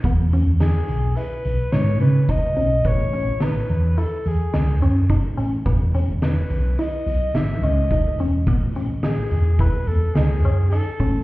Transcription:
<<
  \new Staff \with { instrumentName = "Soprano saxophone" } { \time 5/4 \key e \major \tempo 4 = 107 r4 gis'4 b'4 cis''8 b'8 dis''4 | cis''4 b'4 a'8 gis'4 r4. | r4 b'4 dis''4 e''8 dis''4 r8 | r4 gis'4 b'8 a'8 gis'4 a'4 | }
  \new Staff \with { instrumentName = "Synth arpeggio sound" } { \time 5/4 \key e \major b8 cis'8 dis'4 e'4 dis'8 cis'8 dis'8 cis'8 | b8 cis'8 dis'4 e'4 dis'8 cis'8 dis'8 cis'8 | b8 cis'8 dis'4 e'4 dis'8 cis'8 dis'8 cis'8 | b8 cis'8 dis'4 e'4 dis'8 cis'8 dis'8 cis'8 | }
  \new Staff \with { instrumentName = "Fingered electric bass" } { \clef bass \time 5/4 \key e \major e,8. e,8 r16 b,,8 r8 b,,16 r16 gis,8 cis8 r8 b,,8 | a,,8. a,,8 r16 e,8 r8 e,16 r16 cis,8 fis,8 r8 a,,8 | e,,8. e,,8 r16 b,,8 r8 b,,16 r16 gis,,8 cis,8 r8 e,,8 | a,,8. a,,8 r16 e,8 r8 e,16 r16 cis,8 fis,8 r8 a,,8 | }
  \new DrumStaff \with { instrumentName = "Drums" } \drummode { \time 5/4 <hh bd>8 hh8 <hh sn>8 hh8 hh8 hh8 <hh sn>8 hh8 <hh bd>8 hh8 | <hh bd>8 hh8 <hh sn>8 hh8 hh8 hh8 <hh sn>8 hh8 <hh bd>8 hh8 | <hh bd>8 hh8 <hh sn>8 hh8 hh8 hh8 <hh sn>8 hh8 <hh bd>8 hh8 | <hh bd>8 hh8 <hh sn>8 hh8 <hh bd>8 hh8 <hh sn>8 hh8 hh8 <hh bd>8 | }
>>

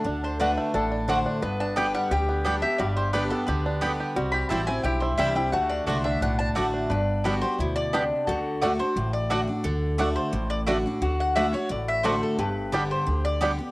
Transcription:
<<
  \new Staff \with { instrumentName = "Mandolin" } { \time 4/4 \key d \mixolydian \tempo 4 = 175 r8 c''8 d''8 r2 r8 | r8 a''8 g''8 fis''8 g''4. e''8 | d''8 c''8 b'8 a'8 b'4. r8 | r8 b''8 a''8 gis''8 g''8 c''8 e''8 g''8 |
fis''8 d''8 c''8 e''8 fis''8 a''8 r4 | b'4. c''4 d''8 r4 | a'4. c''4 d''8 r4 | a'4. c''4 d''8 r4 |
r8 fis''8 e''8 cis''8 d''8 e''8 c''8 a'8 | b'4. c''4 d''8 r4 | }
  \new Staff \with { instrumentName = "Mandolin" } { \time 4/4 \key d \mixolydian r4 <a fis' d'' fis''>16 r4. r16 <a fis' d'' fis''>16 r8. | r4 <b g' d'' g''>16 r4. r16 <b g' d'' g''>16 r8. | r4 <b g' d'' g''>16 r4. r16 <b g' d'' g''>16 r8. | r4 <c' e' c'' g''>16 r4. r16 <c' e' c'' g''>16 r8. |
r4 <a fis' d'' fis''>16 r4. r16 <a fis' d'' fis''>16 r8. | r4 <b g' d'' g''>16 r4. r16 <b g' d'' g''>16 r8. | r4 <a fis' d'' fis''>16 r4. r16 <a fis' d'' fis''>16 r8. | r4 <a fis' d'' fis''>16 r4. r16 <a fis' d'' fis''>16 r8. |
r4 <a fis' d'' fis''>16 r4. r16 <a fis' d'' fis''>16 r8. | r4 <b g' d'' g''>16 r4. r16 <b g' d'' g''>16 r8. | }
  \new Staff \with { instrumentName = "Resonator guitar played with a steel bar" } { \time 4/4 \key d \mixolydian a'4 b'4 a'4 c''4 | b'4 b'4 g'2 | g'1 | fis'2 e'4 g'4 |
fis'2.~ fis'8 r8 | d'4 fis'4 e'4 d'4 | fis'1~ | fis'1 |
fis'2. a'4 | g'1 | }
  \new Staff \with { instrumentName = "Five-string banjo" } { \time 4/4 \key d \mixolydian d'8 d'8 d'8 a8 d'8 d'8 d'8 d'8 | b8 d'8 g'8 g8 g'8 b8 d'8 g'8 | g8 g'8 d'8 b8 g'8 d'8 b8 g'8 | g8 g'8 e'8 c'8 g'8 e'8 g8 e'8 |
a8 d'8 d'8 d'8 d'8 d'8 a8 d'8 | r4 <g b d'>8 r4. <g b d'>8 r8 | r4 <a d'>8 r4. <a d'>8 r8 | r4 <a d'>8 r4. <a d'>8 r8 |
r4 <a d'>8 r4. <a d'>8 r8 | r4 <g b d'>8 r4. <g b d'>8 r8 | }
  \new Staff \with { instrumentName = "Steel-string acoustic guitar" } { \time 4/4 \key d \mixolydian << { r4 <d a d' fis'>4 r4 <d a d' fis'>4 | r4 <d g b g'>4 r4 <d g b g'>8 <b g'>8 | r4 <d g b g'>8 <b g'>8 r4 <d g b g'>4 | r4 <e g c' e'>8 <c' e'>8 r4 <e g c' e'>8 <c' e'>8 |
r4 <d a d' fis'>4 r4 <d a d' fis'>4 | r4 <d g b g'>8 <b g'>8 r2 | r4 <d a d' fis'>8 <d' fis'>8 r4 <d a d' fis'>8 <d' fis'>8 | r4 <d a d' fis'>4 r4 <d a d' fis'>8 <d' fis'>8 |
r4 <d a d' fis'>8 <d' fis'>8 r4 <d a d' fis'>4 | r4 <d g b g'>4 r4 <d g b g'>8 <b g'>8 | } \\ { d2 a,2 | g,2 d2 | g,2 d2 | c2 g,2 |
d2 a,2 | g,2 b,4 c4 | d2 a,2 | d2 a,2 |
d2 a,2 | g,2 d2 | } >> }
  \new Staff \with { instrumentName = "Upright bass" } { \clef bass \time 4/4 \key d \mixolydian d,2 a,,2 | g,,2 d,2 | g,,2 d,2 | c,4 a,,4 b,,4 c,4 |
d,4 c,4 b,,4 a,,4 | g,,2 d,2 | d,2 a,,2 | d,2 a,,2 |
d,2 a,,2 | g,,2 d,2 | }
>>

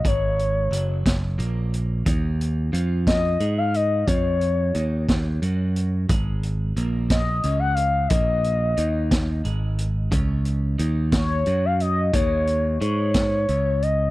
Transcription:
<<
  \new Staff \with { instrumentName = "Analog synth lead" } { \time 6/8 \key des \major \tempo 4. = 60 des''2 r4 | r4. ees''8. f''16 ees''8 | des''2 r4 | r4. ees''8. ges''16 f''8 |
ees''2 r4 | r4. des''8. f''16 ees''8 | des''4 des''4. ees''8 | }
  \new Staff \with { instrumentName = "Clean electric guitar" } { \clef bass \time 6/8 \key des \major <aes, aes>4 <ges, ges>8 r8 <bes, bes>4 | <ees ees'>4 <f f'>4 <aes aes'>4 | <f f'>4 <ees ees'>8 r8 <ges ges'>4 | <aes, aes>4 <bes, bes>4 <des des'>4 |
<bes, bes>4 <ees ees'>4 <aes, aes>4 | <des des'>4 <ees ees'>4 <ges ges'>4 | <ees ees'>4 <aes aes'>4 <des des'>4 | }
  \new Staff \with { instrumentName = "Picked electric bass" } { \clef bass \time 6/8 \key des \major aes,,4 ges,,8 ges,,8 bes,,4 | ees,4 f,4 aes,4 | f,4 ees,8 ees,8 ges,4 | aes,,4 bes,,4 des,4 |
bes,,4 ees,4 aes,,4 | des,4 ees,4 ges,4 | ees,4 aes,4 des,4 | }
  \new DrumStaff \with { instrumentName = "Drums" } \drummode { \time 6/8 <hh bd>8 hh8 hh8 <hh bd sn>8 hh8 hh8 | <hh bd>8 hh8 hh8 <hh bd sn>8 hh8 hh8 | <hh bd>8 hh8 hh8 <hh bd sn>8 hh8 hh8 | <hh bd>8 hh8 hh8 <hh bd sn>8 hh8 hh8 |
<hh bd>8 hh8 hh8 <hh bd sn>8 hh8 hh8 | <hh bd>8 hh8 hh8 <hh bd sn>8 hh8 hh8 | <hh bd>8 hh8 hh8 <hh bd sn>8 hh8 hh8 | }
>>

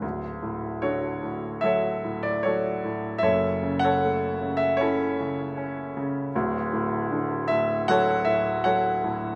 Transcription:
<<
  \new Staff \with { instrumentName = "Grand piano" } { \time 4/4 \key d \lydian \tempo 4 = 78 << { r4 cis''4 e''8. d''16 cis''8. r16 | e''8. fis''4 e''16 cis''4. r8 | r4. e''8 fis''8 e''8 fis''8. r16 | } \\ { r4 <fis' a'>4 <a' cis''>4 <fis' a'>4 | <a' cis''>8. <a' cis''>4~ <a' cis''>16 <e' a'>2 | r2 <a' cis''>4 <a' cis''>4 | } >> }
  \new Staff \with { instrumentName = "Grand piano" } { \clef bass \time 4/4 \key d \lydian <d,, d,>8 a,8 d8 a,8 fis8 a,8 fis8 a,8 | <fis,, fis,>8 cis8 a8 cis8 cis'8 cis8 cis'8 cis8 | <d,, d,>8 a,8 d8 a,8 fis8 a,8 fis8 a,8 | }
>>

